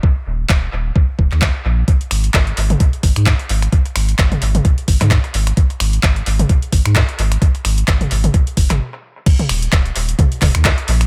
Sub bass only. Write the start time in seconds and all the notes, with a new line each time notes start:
0.26 D#1
0.49 D#1
0.72 D#1
1.19 D#1
1.32 D#2
1.65 A#1
2.11 G#1
2.34 G#1
2.57 G#1
3.03 G#1
3.16 G#2
3.49 G#1
3.96 G#1
4.19 G#1
4.42 G#1
4.88 G#1
5.01 G#2
5.34 G#1
5.80 G#1
6.03 G#1
6.26 G#1
6.72 G#1
6.85 G#2
7.19 G#1
7.65 G#1
7.88 G#1
8.11 G#1
8.57 F#1
8.70 G#1
9.49 D#1
9.72 D#1
9.96 D#1
10.42 D#1
10.55 D#2
10.88 A#1